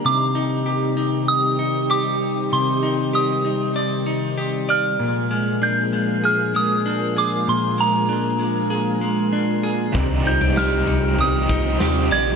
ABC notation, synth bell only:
X:1
M:4/4
L:1/8
Q:1/4=97
K:Cm
V:1 name="Synth bell"
d'4 e'2 d'2 | c'2 e'2 z3 f'- | f'2 g'2 f' e'2 d' | c' b6 z |
z g' f'2 e'3 a' |]